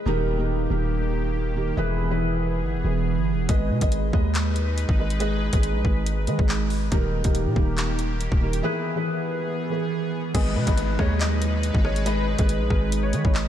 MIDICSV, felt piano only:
0, 0, Header, 1, 2, 480
1, 0, Start_track
1, 0, Key_signature, 5, "minor"
1, 0, Tempo, 428571
1, 68, Time_signature, 4, 2, 24, 8
1, 15098, End_track
2, 0, Start_track
2, 0, Title_t, "Felt piano"
2, 0, Program_c, 0, 0
2, 0, Control_c, 0, 64, 127
2, 61, Note_on_c, 0, 51, 125
2, 69, Note_on_c, 0, 63, 114
2, 76, Note_on_c, 0, 67, 117
2, 83, Control_c, 0, 64, 0
2, 83, Note_on_c, 0, 70, 127
2, 262, Control_c, 0, 64, 127
2, 319, Note_off_c, 0, 51, 0
2, 322, Note_off_c, 0, 63, 0
2, 326, Note_off_c, 0, 67, 0
2, 329, Note_off_c, 0, 70, 0
2, 425, Note_on_c, 0, 51, 88
2, 432, Note_on_c, 0, 63, 83
2, 439, Note_on_c, 0, 67, 85
2, 446, Note_on_c, 0, 70, 97
2, 682, Note_off_c, 0, 51, 0
2, 686, Note_off_c, 0, 63, 0
2, 689, Note_off_c, 0, 67, 0
2, 693, Note_off_c, 0, 70, 0
2, 777, Note_on_c, 0, 51, 93
2, 785, Note_on_c, 0, 63, 79
2, 791, Note_on_c, 0, 67, 88
2, 799, Note_on_c, 0, 70, 104
2, 1460, Note_off_c, 0, 51, 0
2, 1463, Note_off_c, 0, 63, 0
2, 1467, Note_off_c, 0, 67, 0
2, 1471, Note_off_c, 0, 70, 0
2, 1736, Note_on_c, 0, 51, 81
2, 1743, Note_on_c, 0, 63, 73
2, 1750, Note_on_c, 0, 67, 86
2, 1758, Note_on_c, 0, 70, 91
2, 1915, Note_off_c, 0, 51, 0
2, 1919, Note_off_c, 0, 63, 0
2, 1922, Note_off_c, 0, 67, 0
2, 1926, Note_off_c, 0, 70, 0
2, 1979, Note_on_c, 0, 52, 110
2, 1986, Note_on_c, 0, 64, 118
2, 1993, Note_on_c, 0, 68, 112
2, 2000, Note_on_c, 0, 71, 122
2, 2005, Control_c, 0, 64, 0
2, 2193, Control_c, 0, 64, 127
2, 2237, Note_off_c, 0, 52, 0
2, 2241, Note_off_c, 0, 64, 0
2, 2244, Note_off_c, 0, 68, 0
2, 2248, Note_off_c, 0, 71, 0
2, 2346, Note_on_c, 0, 52, 89
2, 2353, Note_on_c, 0, 64, 86
2, 2360, Note_on_c, 0, 68, 83
2, 2368, Note_on_c, 0, 71, 101
2, 2934, Note_off_c, 0, 52, 0
2, 2938, Note_off_c, 0, 64, 0
2, 2941, Note_off_c, 0, 68, 0
2, 2945, Note_off_c, 0, 71, 0
2, 3177, Note_on_c, 0, 52, 86
2, 3184, Note_on_c, 0, 64, 75
2, 3192, Note_on_c, 0, 68, 73
2, 3198, Note_on_c, 0, 71, 88
2, 3690, Note_off_c, 0, 52, 0
2, 3694, Note_off_c, 0, 64, 0
2, 3697, Note_off_c, 0, 68, 0
2, 3701, Note_off_c, 0, 71, 0
2, 3897, Note_on_c, 0, 56, 103
2, 3904, Note_on_c, 0, 68, 92
2, 3911, Note_on_c, 0, 71, 94
2, 3918, Note_on_c, 0, 75, 105
2, 3921, Control_c, 0, 64, 0
2, 4140, Control_c, 0, 64, 127
2, 4156, Note_off_c, 0, 56, 0
2, 4160, Note_off_c, 0, 68, 0
2, 4163, Note_off_c, 0, 71, 0
2, 4167, Note_off_c, 0, 75, 0
2, 4261, Note_on_c, 0, 56, 96
2, 4269, Note_on_c, 0, 68, 84
2, 4276, Note_on_c, 0, 71, 76
2, 4283, Note_on_c, 0, 75, 101
2, 4521, Note_off_c, 0, 56, 0
2, 4524, Note_off_c, 0, 68, 0
2, 4528, Note_off_c, 0, 71, 0
2, 4531, Note_off_c, 0, 75, 0
2, 4617, Note_on_c, 0, 56, 88
2, 4624, Note_on_c, 0, 68, 85
2, 4631, Note_on_c, 0, 71, 92
2, 4638, Note_on_c, 0, 75, 109
2, 5300, Note_off_c, 0, 56, 0
2, 5303, Note_off_c, 0, 68, 0
2, 5307, Note_off_c, 0, 71, 0
2, 5310, Note_off_c, 0, 75, 0
2, 5577, Note_on_c, 0, 56, 90
2, 5584, Note_on_c, 0, 68, 75
2, 5591, Note_on_c, 0, 71, 78
2, 5598, Note_on_c, 0, 75, 85
2, 5755, Note_off_c, 0, 56, 0
2, 5759, Note_off_c, 0, 68, 0
2, 5763, Note_off_c, 0, 71, 0
2, 5766, Note_off_c, 0, 75, 0
2, 5815, Note_on_c, 0, 56, 111
2, 5822, Note_on_c, 0, 68, 112
2, 5829, Note_on_c, 0, 71, 103
2, 5837, Note_on_c, 0, 75, 127
2, 6075, Note_off_c, 0, 56, 0
2, 6079, Note_off_c, 0, 68, 0
2, 6083, Note_off_c, 0, 71, 0
2, 6086, Note_off_c, 0, 75, 0
2, 6185, Note_on_c, 0, 56, 92
2, 6192, Note_on_c, 0, 68, 87
2, 6199, Note_on_c, 0, 71, 89
2, 6206, Note_on_c, 0, 75, 90
2, 6774, Note_off_c, 0, 56, 0
2, 6777, Note_off_c, 0, 68, 0
2, 6781, Note_off_c, 0, 71, 0
2, 6784, Note_off_c, 0, 75, 0
2, 7016, Note_on_c, 0, 56, 81
2, 7024, Note_on_c, 0, 68, 78
2, 7030, Note_on_c, 0, 71, 80
2, 7038, Note_on_c, 0, 75, 97
2, 7530, Note_off_c, 0, 56, 0
2, 7533, Note_off_c, 0, 68, 0
2, 7537, Note_off_c, 0, 71, 0
2, 7540, Note_off_c, 0, 75, 0
2, 7741, Note_on_c, 0, 51, 127
2, 7748, Note_on_c, 0, 63, 114
2, 7755, Note_on_c, 0, 67, 116
2, 7763, Note_on_c, 0, 70, 127
2, 7764, Control_c, 0, 64, 0
2, 7930, Control_c, 0, 64, 127
2, 7998, Note_off_c, 0, 51, 0
2, 8002, Note_off_c, 0, 63, 0
2, 8006, Note_off_c, 0, 67, 0
2, 8009, Note_off_c, 0, 70, 0
2, 8105, Note_on_c, 0, 51, 91
2, 8112, Note_on_c, 0, 63, 87
2, 8119, Note_on_c, 0, 67, 85
2, 8126, Note_on_c, 0, 70, 99
2, 8362, Note_off_c, 0, 51, 0
2, 8366, Note_off_c, 0, 63, 0
2, 8369, Note_off_c, 0, 67, 0
2, 8373, Note_off_c, 0, 70, 0
2, 8457, Note_on_c, 0, 51, 91
2, 8464, Note_on_c, 0, 63, 80
2, 8471, Note_on_c, 0, 67, 88
2, 8478, Note_on_c, 0, 70, 108
2, 9140, Note_off_c, 0, 51, 0
2, 9143, Note_off_c, 0, 63, 0
2, 9147, Note_off_c, 0, 67, 0
2, 9150, Note_off_c, 0, 70, 0
2, 9416, Note_on_c, 0, 51, 82
2, 9423, Note_on_c, 0, 63, 73
2, 9430, Note_on_c, 0, 67, 81
2, 9437, Note_on_c, 0, 70, 90
2, 9595, Note_off_c, 0, 51, 0
2, 9599, Note_off_c, 0, 63, 0
2, 9602, Note_off_c, 0, 67, 0
2, 9606, Note_off_c, 0, 70, 0
2, 9658, Note_on_c, 0, 52, 112
2, 9665, Note_on_c, 0, 64, 118
2, 9672, Note_on_c, 0, 68, 108
2, 9679, Note_on_c, 0, 71, 123
2, 9685, Control_c, 0, 64, 0
2, 9844, Control_c, 0, 64, 127
2, 9917, Note_off_c, 0, 52, 0
2, 9920, Note_off_c, 0, 64, 0
2, 9924, Note_off_c, 0, 68, 0
2, 9928, Note_off_c, 0, 71, 0
2, 10026, Note_on_c, 0, 52, 94
2, 10033, Note_on_c, 0, 64, 85
2, 10040, Note_on_c, 0, 68, 84
2, 10047, Note_on_c, 0, 71, 100
2, 10614, Note_off_c, 0, 52, 0
2, 10617, Note_off_c, 0, 64, 0
2, 10621, Note_off_c, 0, 68, 0
2, 10625, Note_off_c, 0, 71, 0
2, 10857, Note_on_c, 0, 52, 83
2, 10864, Note_on_c, 0, 64, 75
2, 10871, Note_on_c, 0, 68, 75
2, 10878, Note_on_c, 0, 71, 88
2, 11370, Note_off_c, 0, 52, 0
2, 11373, Note_off_c, 0, 64, 0
2, 11377, Note_off_c, 0, 68, 0
2, 11381, Note_off_c, 0, 71, 0
2, 11577, Note_on_c, 0, 56, 105
2, 11584, Note_on_c, 0, 68, 94
2, 11591, Note_on_c, 0, 71, 95
2, 11598, Note_on_c, 0, 75, 108
2, 11605, Control_c, 0, 64, 0
2, 11799, Control_c, 0, 64, 127
2, 11836, Note_off_c, 0, 56, 0
2, 11840, Note_off_c, 0, 68, 0
2, 11843, Note_off_c, 0, 71, 0
2, 11847, Note_off_c, 0, 75, 0
2, 11942, Note_on_c, 0, 56, 92
2, 11950, Note_on_c, 0, 68, 88
2, 11957, Note_on_c, 0, 71, 76
2, 11964, Note_on_c, 0, 75, 105
2, 12201, Note_off_c, 0, 56, 0
2, 12205, Note_off_c, 0, 68, 0
2, 12208, Note_off_c, 0, 71, 0
2, 12212, Note_off_c, 0, 75, 0
2, 12298, Note_on_c, 0, 56, 93
2, 12304, Note_on_c, 0, 68, 88
2, 12312, Note_on_c, 0, 71, 91
2, 12319, Note_on_c, 0, 75, 114
2, 12980, Note_off_c, 0, 56, 0
2, 12983, Note_off_c, 0, 68, 0
2, 12987, Note_off_c, 0, 71, 0
2, 12991, Note_off_c, 0, 75, 0
2, 13258, Note_on_c, 0, 56, 94
2, 13265, Note_on_c, 0, 68, 79
2, 13272, Note_on_c, 0, 71, 78
2, 13279, Note_on_c, 0, 75, 85
2, 13436, Note_off_c, 0, 56, 0
2, 13440, Note_off_c, 0, 68, 0
2, 13443, Note_off_c, 0, 71, 0
2, 13447, Note_off_c, 0, 75, 0
2, 13496, Note_on_c, 0, 56, 115
2, 13503, Note_on_c, 0, 68, 111
2, 13510, Note_on_c, 0, 71, 103
2, 13518, Note_on_c, 0, 75, 127
2, 13756, Note_off_c, 0, 56, 0
2, 13760, Note_off_c, 0, 68, 0
2, 13763, Note_off_c, 0, 71, 0
2, 13767, Note_off_c, 0, 75, 0
2, 13865, Note_on_c, 0, 56, 94
2, 13872, Note_on_c, 0, 68, 89
2, 13880, Note_on_c, 0, 71, 93
2, 13887, Note_on_c, 0, 75, 95
2, 14454, Note_off_c, 0, 56, 0
2, 14457, Note_off_c, 0, 68, 0
2, 14461, Note_off_c, 0, 71, 0
2, 14464, Note_off_c, 0, 75, 0
2, 14696, Note_on_c, 0, 56, 86
2, 14703, Note_on_c, 0, 68, 81
2, 14711, Note_on_c, 0, 71, 86
2, 14718, Note_on_c, 0, 75, 97
2, 15098, Note_off_c, 0, 56, 0
2, 15098, Note_off_c, 0, 68, 0
2, 15098, Note_off_c, 0, 71, 0
2, 15098, Note_off_c, 0, 75, 0
2, 15098, End_track
0, 0, End_of_file